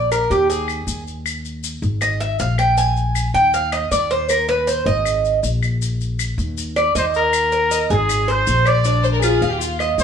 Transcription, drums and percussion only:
0.12 claves medium
0.12 maracas medium
0.31 maracas soft
0.50 maracas medium
0.68 claves medium
0.68 maracas soft
0.88 maracas medium
1.07 maracas soft
1.26 claves medium
1.26 maracas medium
1.45 maracas soft
1.64 maracas medium
1.83 maracas soft
2.01 claves medium
2.01 maracas medium
2.21 maracas soft
2.39 maracas medium
2.58 claves medium
2.58 maracas soft
2.77 maracas medium
2.97 maracas soft
3.15 claves medium
3.15 maracas medium
3.35 maracas soft
3.54 maracas medium
3.72 claves medium
3.72 maracas soft
3.92 maracas medium
4.11 maracas soft
4.29 claves medium
4.29 maracas medium
4.48 maracas soft
4.68 maracas medium
4.87 maracas soft
5.05 claves medium
5.05 maracas medium
5.25 maracas soft
5.43 maracas medium
5.63 claves medium
5.63 maracas soft
5.82 maracas medium
6.01 maracas soft
6.19 claves medium
6.19 maracas medium
6.38 maracas soft
6.58 maracas medium
6.76 claves medium
6.76 maracas soft
6.96 maracas medium
7.14 maracas soft
7.33 claves medium
7.33 maracas medium
7.52 maracas soft
7.71 maracas medium
7.90 maracas soft
8.09 claves medium
8.09 maracas medium
8.29 maracas soft
8.47 maracas medium
8.66 claves medium
8.66 maracas soft
8.85 maracas medium
9.04 maracas soft
9.23 claves medium
9.23 maracas medium
9.42 maracas soft
9.61 maracas medium
9.79 claves medium
9.79 maracas soft
9.99 maracas medium

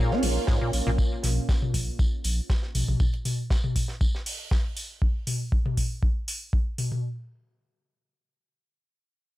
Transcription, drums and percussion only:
0.11 snare soft
0.23 open hi-hat medium
0.23 open hi-hat loud
0.47 kick loud
0.47 snare loud
0.47 tambourine medium
0.73 open hi-hat medium
0.73 tambourine medium
0.98 kick loud
0.98 tambourine medium
1.23 snare soft
1.23 open hi-hat loud
1.23 mid tom medium
1.23 tambourine medium
1.49 kick loud
1.49 snare loud
1.49 tambourine medium
1.62 mid tom medium
1.74 kick medium
1.74 open hi-hat loud
1.74 tambourine medium
1.99 kick loud
1.99 tambourine medium
2.24 open hi-hat loud
2.24 tambourine medium
2.50 kick loud
2.50 snare loud
2.50 tambourine medium
2.63 snare soft
2.75 open hi-hat medium
2.75 mid tom medium
2.75 tambourine medium
2.88 mid tom medium
3.00 kick loud
3.00 tambourine medium
3.14 closed hi-hat soft
3.25 open hi-hat loud
3.25 mid tom medium
3.25 tambourine medium
3.50 kick loud
3.50 snare loud
3.50 tambourine medium
3.64 mid tom medium
3.76 kick medium
3.76 open hi-hat medium
3.76 tambourine medium
3.88 snare soft
4.01 kick loud
4.01 tambourine medium
4.15 snare soft
4.26 open hi-hat loud
4.26 open hi-hat medium
4.51 kick loud
4.51 snare loud
4.51 tambourine medium
4.77 open hi-hat medium
4.77 tambourine medium
5.02 kick loud
5.27 open hi-hat loud
5.27 mid tom medium
5.52 kick loud
5.66 mid tom medium
5.77 kick medium
5.77 open hi-hat medium
6.03 kick loud
6.28 open hi-hat loud
6.53 kick loud
6.78 open hi-hat medium
6.78 mid tom medium
6.92 mid tom medium

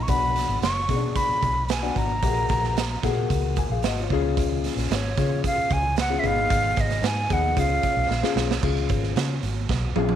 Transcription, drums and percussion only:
0.08 kick loud
0.08 closed hi-hat medium
0.36 snare soft
0.36 closed hi-hat medium
0.62 snare medium
0.62 closed hi-hat medium
0.89 kick medium
0.89 closed hi-hat medium
1.16 kick medium
1.16 closed hi-hat loud
1.42 kick medium
1.42 closed hi-hat medium
1.68 snare loud
1.68 closed hi-hat medium
1.83 closed hi-hat soft
1.96 kick medium
1.96 closed hi-hat medium
2.23 kick loud
2.23 closed hi-hat medium
2.49 kick medium
2.49 snare soft
2.49 closed hi-hat medium
2.64 snare soft
2.77 snare loud
2.77 closed hi-hat medium
3.03 kick medium
3.03 snare soft
3.03 closed hi-hat medium
3.30 kick medium
3.30 closed hi-hat medium
3.56 kick medium
3.56 closed hi-hat medium
3.83 snare medium
3.83 closed hi-hat medium
3.97 closed hi-hat soft
4.10 kick medium
4.10 open hi-hat soft
4.37 kick loud
4.37 closed hi-hat medium
4.64 snare soft
4.64 closed hi-hat medium
4.77 snare soft
4.77 closed hi-hat medium
4.91 snare medium
4.91 closed hi-hat medium
5.17 kick loud
5.17 snare soft
5.17 closed hi-hat medium
5.44 kick loud
5.44 closed hi-hat loud
5.70 kick medium
5.70 closed hi-hat medium
5.96 snare medium
5.96 closed hi-hat medium
6.24 kick medium
6.24 closed hi-hat medium
6.50 kick loud
6.50 closed hi-hat loud
6.76 kick medium
6.76 snare soft
6.76 closed hi-hat medium
6.90 snare soft
6.90 closed hi-hat medium
7.03 snare medium
7.03 closed hi-hat medium
7.30 kick loud
7.30 closed hi-hat medium
7.57 kick medium
7.57 closed hi-hat loud
7.83 kick medium
7.83 closed hi-hat medium
8.11 snare soft
8.24 snare medium
8.37 snare medium
8.51 snare medium
8.63 kick loud
8.63 crash medium
8.76 closed hi-hat soft
8.89 kick loud
8.89 closed hi-hat medium
9.03 snare soft
9.16 snare medium
9.16 closed hi-hat medium
9.43 closed hi-hat medium
9.69 kick loud
9.69 snare medium
9.96 high tom medium
10.09 high tom medium

